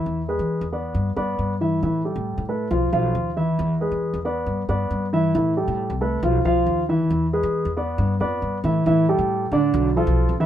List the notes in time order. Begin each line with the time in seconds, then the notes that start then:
Already playing: E3 E4 E5
0.06 E2
0.28 G#3 G#4 B4
0.39 E3
0.61 E2
0.72 B3 B4 D5
0.94 G2
1.16 G2 B3 B4 D5
1.39 G2
1.61 E3 E4 E5
1.83 A2 E3 E4 E5
2.05 G3 G4 A4
2.16 A2
2.38 A2
2.49 A3 A4 B4
2.71 B1 F3 F4 F5
2.93 B1 F3 F4 F5
3.15 D#2
3.37 E3 E4 E5
3.59 E2
3.81 G#3 G#4 B4
3.92 E3
4.14 E2
4.25 B3 B4 D5
4.46 G2
4.69 G2 B3 B4 D5
4.91 G2
5.13 E3 E4 E5
5.35 A2 E3 E4 E5
5.57 G3 G4 A4
5.68 A2
5.90 C2
6.01 A3 A4 B4
6.23 B1 F3 F4 F5
6.45 B1 F3 F4 F5
6.66 D#2
6.89 E3 E4 E5
7.11 E2
7.33 G#3 G#4 B4
7.43 E3
7.65 E2
7.77 B3 B4 D5
7.98 G2
8.20 F2 B3 B4 D5
8.42 G2
8.64 A2 E3 E4 E5
8.86 A2 E3 E4 E5
9.08 G3 G4 A4
9.19 A2
9.52 A2 D3 D4 D5
9.74 B1
9.96 F3 F4 A4
10.07 B1
10.29 A1
10.40 E3 E4 E5